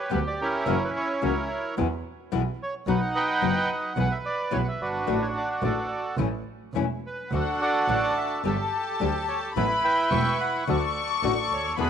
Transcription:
Already playing: bandoneon G4 B4
0.10 double bass D2, nylon-string guitar B2 D3 G3 B3 G4, bandoneon B4
0.27 bandoneon D5
0.41 bandoneon C#4 E4 A#4
0.66 double bass F#1, nylon-string guitar C#3 E3 A#3 C#4 F#4
0.84 bandoneon B4
0.97 bandoneon C#5
1.22 double bass C#2, nylon-string guitar C#3 E3 A#3 C#4 F#4, bandoneon E4 A#4 C#5
1.77 double bass E2, nylon-string guitar B2 E3 G#3 B3 E4
2.32 double bass B1, nylon-string guitar B2 E3 G#3 B3 E4
2.63 bandoneon C#5
2.87 double bass B1, nylon-string guitar B2 F#3 B3 D#4 F#4, bandoneon D#4 B4 F#5
3.15 bandoneon B4 D#5 G5
3.41 double bass F#1, nylon-string guitar B2 F#3 B3 D#4 F#4
3.72 bandoneon F#5
3.96 double bass B1, nylon-string guitar B2 E3 G#3 B3 E4, bandoneon B4 F#5
4.12 bandoneon E5
4.26 bandoneon D5
4.51 double bass B1, nylon-string guitar B2 E3 G#3 B3 E4, bandoneon C#5
4.64 bandoneon F#5
4.68 bandoneon E5
4.81 double bass G1, bandoneon D4 F#4 B4
5.07 double bass A1, nylon-string guitar D3 A3 D4 F#4
5.22 bandoneon C#5
5.37 bandoneon D5
5.61 double bass A1, nylon-string guitar D3 A3 D4 F#4, bandoneon F#4 A4 D5
6.17 double bass A1, nylon-string guitar E3 A3 C#4 E4
6.74 double bass E1, nylon-string guitar E3 A3 C#4 E4
7.07 bandoneon B4
7.31 double bass D2, nylon-string guitar D3 A3 D4 F#4, bandoneon D4 F#4 A4, violin section F#5
7.62 bandoneon A4 D5 F#5
7.87 double bass A1, nylon-string guitar D3 A3 D4 F#4, violin section A5
8.17 bandoneon E5
8.43 double bass G1, nylon-string guitar D3 G3 D4 G4, bandoneon G4 A4 E5, violin section A5
9.00 double bass D2, nylon-string guitar D3 G3 D4 G4
9.28 bandoneon C#5
9.55 double bass A1, nylon-string guitar E3 A3 B3 E4, bandoneon E4 B4, violin section B5
9.85 bandoneon B4 E5 G5
10.10 double bass E1, nylon-string guitar E3 A3 B3 E4, violin section C#6
10.39 bandoneon F#5, violin section B5
10.67 double bass D2, nylon-string guitar D3 A3 D4 F#4, bandoneon A4 D5 F#5, violin section C#6
11.23 double bass A1, nylon-string guitar D3 A3 D4 F#4
11.51 double bass D2, bandoneon C#5
11.77 double bass E2, nylon-string guitar B2 D3 G#3 B3 E4, bandoneon D4 G#4 B4, violin section B5

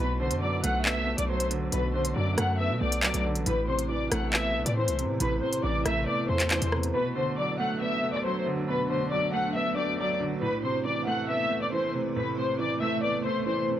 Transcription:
Already playing: ambient pad A3 B4
0.00 808-style bass B1, grand piano B2, ambient pad D4 F#4, violin section B4 B5
0.20 grand piano D3, violin section C5 C6
0.31 808-style bass F#2, closed hi-hat
0.42 grand piano F#3, violin section D5 D6
0.64 808-style bass B1, grand piano A3, violin section F#5 F#6, closed hi-hat
0.85 grand piano B3, violin section E5 E6, clap
1.07 grand piano A3
1.18 808-style bass B1, violin section D5 D6, closed hi-hat
1.29 grand piano F#3, violin section C5 C6
1.40 closed hi-hat
1.51 grand piano D3, closed hi-hat
1.72 808-style bass B1, grand piano B2, violin section B4 B5, closed hi-hat
1.94 grand piano D3, violin section C5 C6
2.05 closed hi-hat
2.15 808-style bass F#2, grand piano F#3, violin section D5 D6
2.38 808-style bass F#2, grand piano A3, violin section F#5 F#6, cross-stick, closed hi-hat
2.59 grand piano B3, violin section E5 E6
2.70 808-style bass B2
2.81 808-style bass B1, grand piano A3, violin section D5 D6
2.92 closed hi-hat
3.03 808-style bass C2, grand piano F#3, violin section D5 D6, clap, closed hi-hat
3.14 808-style bass B1, closed hi-hat
3.25 grand piano D3
3.35 808-style bass A1, closed hi-hat
3.46 808-style bass A1, grand piano A2, ambient pad C3 A3 E4 B4, violin section B4 B5, closed hi-hat
3.68 grand piano C3, violin section C5 C6
3.79 closed hi-hat
3.89 grand piano E3, violin section D5 D6
4.11 808-style bass A1, grand piano A3, violin section F#5 F#6, cross-stick, closed hi-hat
4.33 grand piano B3, violin section E5 E6, clap
4.55 808-style bass B1, grand piano A3
4.66 808-style bass A2, violin section D5 D6, closed hi-hat
4.77 grand piano E3, violin section C5 C6
4.88 808-style bass C2, closed hi-hat
4.98 grand piano C3, closed hi-hat
5.04 808-style bass A2
5.20 808-style bass A1, grand piano A2, violin section B4 B5, closed hi-hat
5.42 grand piano C3, violin section C5 C6
5.53 closed hi-hat
5.63 808-style bass A1, grand piano E3, violin section D5 D6
5.85 808-style bass A1, grand piano A3, violin section E5 E6, cross-stick, closed hi-hat
6.07 grand piano B3, violin section D5 D6
6.29 808-style bass E2, grand piano A3, violin section C5 C6
6.40 clap, closed hi-hat
6.50 grand piano E3, violin section C5 C6, clap, closed hi-hat
6.61 808-style bass E2, closed hi-hat
6.72 grand piano C3, cross-stick
6.83 closed hi-hat
6.94 grand piano B2, ambient pad A3 D4 F#4 B4, violin section B4 B5
7.16 grand piano D3, violin section C5 C6
7.38 grand piano F#3, violin section D5 D6
7.59 grand piano A3, violin section F#5 F#6
7.81 grand piano B3, violin section E5 E6
8.03 grand piano A3
8.14 violin section D5 D6
8.25 grand piano F#3, violin section C5 C6
8.46 grand piano D3
8.68 grand piano B2, violin section B4 B5
8.90 grand piano D3, violin section C5 C6
9.11 grand piano F#3, violin section D5 D6
9.33 grand piano A3, violin section F#5 F#6
9.55 grand piano B3, violin section E5 E6
9.76 grand piano A3, violin section D5 D6
9.99 grand piano F#3, violin section D5 D6
10.20 grand piano D3
10.42 grand piano A2, ambient pad C3 E4, violin section B4 B5
10.63 grand piano C3, violin section C5 C6
10.85 grand piano E3, violin section D5 D6
11.07 grand piano A3, violin section F#5 F#6
11.29 grand piano B3, violin section E5 E6
11.50 grand piano A3
11.62 violin section D5 D6
11.73 grand piano E3, violin section C5 C6
11.94 grand piano C3
12.16 grand piano A2, violin section B4 B5
12.37 grand piano C3, violin section C5 C6
12.59 grand piano E3, violin section D5 D6
12.81 grand piano A3, violin section E5 E6
13.03 grand piano B3, violin section D5 D6
13.25 grand piano A3, violin section C5 C6
13.46 grand piano E3, violin section C5 C6
13.68 grand piano C3

